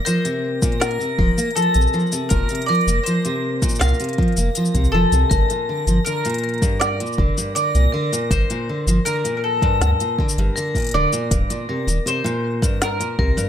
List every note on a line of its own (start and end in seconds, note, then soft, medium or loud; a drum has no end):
0.00 13.49 A#6 medium
0.05 0.23 F3 medium
0.05 0.41 A#4 loud
0.05 0.79 C5 loud
0.05 closed hi-hat medium
0.05 shaker medium
0.25 0.61 C3 loud
0.25 closed hi-hat soft
0.25 shaker soft
0.62 0.98 A#2 loud
0.62 kick loud
0.62 closed hi-hat soft
0.62 shaker medium
0.72 closed hi-hat soft
0.80 1.52 A#4 medium
0.80 snare medium
0.80 closed hi-hat medium
0.80 shaker medium
0.91 closed hi-hat soft
1.00 1.18 C3 medium
1.00 shaker soft
1.18 1.31 D#1 medium
1.18 1.36 F3 medium
1.18 1.54 A#4 medium
1.18 kick loud
1.38 1.48 A#3 medium
1.38 closed hi-hat soft
1.38 shaker medium
1.51 closed hi-hat soft
1.55 1.73 F3 medium
1.55 2.33 A4 medium
1.55 closed hi-hat medium
1.55 shaker medium
1.62 closed hi-hat soft
1.74 1.87 A#1 loud
1.74 1.92 C3 medium
1.74 closed hi-hat soft
1.74 shaker soft
1.81 shaker soft
1.87 shaker soft
1.94 2.11 F3 medium
1.94 shaker soft
2.00 shaker soft
2.06 shaker soft
2.12 2.29 C3 loud
2.12 closed hi-hat soft
2.12 shaker medium
2.29 2.44 F1 loud
2.29 2.48 A#2 medium
2.29 2.66 A#4 loud
2.29 kick loud
2.29 closed hi-hat medium
2.29 shaker medium
2.49 2.68 C3 medium
2.49 closed hi-hat soft
2.49 shaker soft
2.55 closed hi-hat soft
2.62 closed hi-hat soft
2.66 2.86 F3 medium
2.66 3.05 A#4 loud
2.66 3.03 D5 loud
2.66 closed hi-hat soft
2.75 closed hi-hat soft
2.81 closed hi-hat soft
2.87 3.00 F1 medium
2.87 2.99 A#3 medium
2.87 closed hi-hat soft
2.87 shaker medium
3.03 3.24 F3 medium
3.03 3.82 C5 medium
3.03 closed hi-hat medium
3.03 shaker medium
3.25 3.61 C3 loud
3.25 closed hi-hat soft
3.25 shaker soft
3.62 3.98 A#2 loud
3.62 kick loud
3.62 closed hi-hat soft
3.62 shaker medium
3.69 shaker medium
3.75 shaker soft
3.79 3.94 C2 medium
3.79 4.17 A#4 medium
3.79 4.96 F5 loud
3.79 snare medium
3.79 closed hi-hat medium
3.79 shaker medium
3.88 shaker soft
3.94 shaker soft
4.00 4.18 C3 medium
4.00 closed hi-hat soft
4.00 shaker soft
4.04 closed hi-hat soft
4.09 closed hi-hat soft
4.13 closed hi-hat soft
4.18 4.36 F3 medium
4.18 kick loud
4.18 closed hi-hat soft
4.23 closed hi-hat soft
4.28 closed hi-hat soft
4.32 closed hi-hat soft
4.37 4.50 F1 medium
4.37 4.48 A#3 medium
4.37 closed hi-hat soft
4.37 shaker medium
4.55 4.73 F3 medium
4.55 closed hi-hat medium
4.55 shaker medium
4.65 shaker soft
4.74 4.87 C2 medium
4.74 4.92 C3 medium
4.74 kick medium
4.74 closed hi-hat soft
4.74 shaker soft
4.85 shaker soft
4.92 5.06 F1 loud
4.92 5.11 F3 loud
4.92 6.01 A4 loud
5.12 5.25 C2 medium
5.12 5.30 C3 medium
5.12 closed hi-hat soft
5.12 shaker medium
5.30 5.43 G1 loud
5.30 5.49 G2 medium
5.30 5.66 A#4 loud
5.30 kick loud
5.30 closed hi-hat medium
5.30 shaker medium
5.50 5.68 A#2 medium
5.50 closed hi-hat soft
5.50 shaker soft
5.69 5.86 D3 medium
5.87 6.00 G1 loud
5.87 5.98 F3 medium
5.87 closed hi-hat soft
5.87 shaker medium
6.05 6.23 D3 medium
6.05 6.79 A#4 medium
6.05 closed hi-hat medium
6.05 shaker medium
6.25 6.61 A#2 loud
6.25 closed hi-hat soft
6.25 shaker soft
6.29 closed hi-hat soft
6.34 closed hi-hat soft
6.38 closed hi-hat soft
6.44 6.79 A#4 medium
6.44 closed hi-hat soft
6.49 closed hi-hat soft
6.54 closed hi-hat soft
6.58 closed hi-hat soft
6.62 6.98 G2 loud
6.62 kick loud
6.62 closed hi-hat soft
6.62 shaker medium
6.80 7.51 D5 medium
6.80 snare medium
6.80 closed hi-hat medium
6.80 shaker medium
7.00 7.18 A#2 medium
7.00 closed hi-hat soft
7.00 shaker soft
7.07 shaker soft
7.13 shaker soft
7.18 7.31 F1 medium
7.18 7.36 D3 medium
7.18 kick loud
7.38 7.54 G2 loud
7.38 closed hi-hat soft
7.38 shaker medium
7.55 7.73 D3 medium
7.55 8.30 D5 medium
7.55 closed hi-hat medium
7.55 shaker medium
7.75 7.87 C2 loud
7.75 7.92 A#2 medium
7.75 closed hi-hat soft
7.75 shaker soft
7.92 8.11 D3 loud
7.92 8.29 A#4 medium
8.12 8.29 A#2 loud
8.12 closed hi-hat soft
8.12 shaker medium
8.31 8.43 G1 loud
8.31 8.48 G2 medium
8.31 9.05 C5 loud
8.31 kick loud
8.31 closed hi-hat medium
8.31 shaker medium
8.50 8.68 A#2 medium
8.50 closed hi-hat soft
8.50 shaker soft
8.69 8.86 D3 medium
8.87 9.00 G1 loud
8.87 8.98 F3 medium
8.87 closed hi-hat soft
8.87 shaker medium
9.05 9.23 D3 medium
9.05 9.36 A#4 medium
9.05 9.42 A#4 medium
9.05 closed hi-hat medium
9.05 shaker medium
9.24 9.60 A#2 loud
9.24 closed hi-hat soft
9.24 shaker soft
9.37 9.43 A#4 medium
9.44 10.15 A4 medium
9.62 9.98 G2 loud
9.62 kick medium
9.62 closed hi-hat soft
9.81 9.93 D2 medium
9.81 snare medium
9.81 closed hi-hat medium
9.81 shaker medium
10.00 10.18 A#2 medium
10.00 closed hi-hat soft
10.00 shaker soft
10.19 10.36 D3 medium
10.19 kick loud
10.29 shaker medium
10.37 10.50 G1 loud
10.37 10.55 G2 loud
10.37 closed hi-hat soft
10.56 10.74 D3 medium
10.56 10.92 A#4 loud
10.56 shaker medium
10.75 10.92 A#2 medium
10.75 kick medium
10.75 closed hi-hat soft
10.75 shaker soft
10.78 closed hi-hat soft
10.80 closed hi-hat soft
10.82 closed hi-hat soft
10.84 closed hi-hat soft
10.87 closed hi-hat soft
10.89 closed hi-hat soft
10.91 11.06 D1 medium
10.91 11.11 D3 loud
10.91 12.07 D5 loud
10.91 closed hi-hat soft
11.13 11.29 A#2 loud
11.13 closed hi-hat soft
11.13 shaker medium
11.31 11.43 D#1 loud
11.31 11.48 G2 medium
11.31 kick loud
11.31 closed hi-hat medium
11.31 shaker medium
11.50 11.68 A#2 medium
11.50 closed hi-hat medium
11.50 shaker soft
11.69 11.86 C3 medium
11.69 12.04 A#4 medium
11.87 12.00 D#1 loud
11.87 11.98 D#3 medium
11.87 closed hi-hat soft
11.87 shaker medium
12.06 12.23 C3 medium
12.06 12.78 C5 loud
12.06 closed hi-hat medium
12.06 shaker medium
12.24 12.60 A#2 loud
12.24 closed hi-hat soft
12.24 shaker soft
12.62 12.98 G2 loud
12.62 kick loud
12.62 closed hi-hat soft
12.62 shaker medium
12.82 13.49 A#4 loud
12.82 snare medium
12.82 closed hi-hat medium
12.82 shaker medium
13.00 13.18 A#2 medium
13.00 closed hi-hat soft
13.00 shaker soft
13.19 13.31 C2 medium
13.19 13.36 C3 medium
13.19 13.49 A#4 medium
13.19 kick medium
13.37 13.49 G2 loud
13.37 closed hi-hat soft
13.37 shaker medium